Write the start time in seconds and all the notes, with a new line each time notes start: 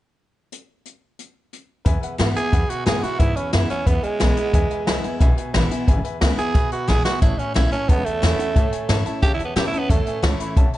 0.52 closed hi-hat
0.85 closed hi-hat
1.19 closed hi-hat
1.53 closed hi-hat
1.85 E2 B4 E5 G#5, kick, closed hi-hat
2.01 B4 E5 F#5, muted upright bass stroke, closed hi-hat
2.18 G#2 E3 G#3 B3 E4 B4 E5 F#5, snare, closed hi-hat
2.35 B3 E4 G#4 B4 E5 G#5, muted upright bass stroke, closed hi-hat
2.52 E2 B2 B4 E5 F#5, kick, closed hi-hat
2.68 F#4 B4 E5 G#5, muted upright bass stroke, closed hi-hat
2.85 A2 E3 G#3 B3 E4 G#4 B4 E5 G#5, snare, closed hi-hat
3.01 B3 E4 F#4 B4 E5 G#5, muted upright bass stroke, closed hi-hat
3.18 E2 G#2 E4 B4 E5 G#5, kick, closed hi-hat
3.35 C#4 B4 E5 B5, muted upright bass stroke, closed hi-hat
3.52 F#2 E3 G#3 B3 E4 B4 E5 G#5, snare, closed hi-hat
3.69 B3 C#4 E4 B4 E5 G#5, muted upright bass stroke, closed hi-hat
3.85 E2 B2 B3 B4 E5 B5, kick, closed hi-hat
4.03 G#3 B4 E5 G#5, muted upright bass stroke, closed hi-hat
4.19 B1 E3 G#3 B3 E4 B4 E5 G#5, snare, closed hi-hat
4.36 B3 E4 B4 E5 G#5, closed hi-hat
4.53 E2 B4 E5 G#5, kick, closed hi-hat
4.70 B4 E5 G#5, muted upright bass stroke, closed hi-hat
4.86 C2 E3 G#3 B3 E4 B4 E5 G#5, snare, closed hi-hat
5.03 B3 E4 B4 E5 G#5, closed hi-hat
5.20 B1 B2 B4 E5 G#5, kick, closed hi-hat
5.37 B4 E5 G#5, closed hi-hat
5.53 A1 E3 G#3 B3 E4 B4 E5 B5, snare, closed hi-hat
5.70 B3 E4 B4 E5 G#5, muted upright bass stroke, closed hi-hat
5.87 G#1 E2 B4 E5 G#5, kick, closed hi-hat
6.04 B4 E5 G#5, muted upright bass stroke, closed hi-hat
6.21 C#2 E3 G#3 B3 E4 B4 E5 G#5, snare, closed hi-hat
6.37 B3 E4 G#4 B4 E5 G#5, muted upright bass stroke, closed hi-hat
6.54 B1 B2 B4 E5 G#5, kick, closed hi-hat
6.72 F#4 B4 E5 B5, muted upright bass stroke, closed hi-hat
6.88 A#1 E3 G#3 B3 E4 G#4 B4 E5 G#5, snare
7.05 B3 E4 F#4 B4 E5 G#5, snare
7.22 A1 A2 E4 C#5 E5 A5, kick, closed hi-hat
7.38 C#4 C#5 E5 G#5, muted upright bass stroke, closed hi-hat
7.54 B1 E3 A3 C#4 E4 C#5 E5 F#5, snare, closed hi-hat
7.71 C#4 E4 C#5 E5 A5, muted upright bass stroke, closed hi-hat
7.88 C#2 E2 B3 C#5 E5 A5, kick, closed hi-hat
8.05 A3 C#5 E5 A5, muted upright bass stroke, closed hi-hat
8.21 E2 E3 A3 C#4 E4 C#5 G#5, snare, closed hi-hat
8.38 C#4 E4 C#5 E5 F#5, muted upright bass stroke, closed hi-hat
8.54 A2 C#5 E5 A5, kick, closed hi-hat
8.71 C#5 E5 G#5, muted upright bass stroke, closed hi-hat
8.87 G#2 E3 A3 C#4 E4 C#5 E5 A5, snare, closed hi-hat
9.04 C#4 E4 C#5 E5 A5, muted upright bass stroke, closed hi-hat
9.21 E2 C#3 G4 C#5 E5 A5, kick, closed hi-hat
9.34 E4 C#5
9.39 E5 A5, muted upright bass stroke, closed hi-hat
9.45 B3
9.56 A2 E3 A3 C#4 E4 G4 E5 A5, snare, closed hi-hat
9.67 E4
9.72 C#4 E4 C#5 E5 A5, muted upright bass stroke, closed hi-hat
9.79 B3
9.89 E2 A2 A3 C#5 E5 A5, kick, closed hi-hat
10.06 C#5 E5 G#5, muted upright bass stroke, closed hi-hat
10.22 C#2 E3 A3 C#4 E4 C#5 E5 A5, snare, closed hi-hat
10.39 C#5 E5 B5, muted upright bass stroke, closed hi-hat
10.56 B1 E2 C#5 E5 A5, kick, closed hi-hat
10.73 C#5 E5 A5, muted upright bass stroke, closed hi-hat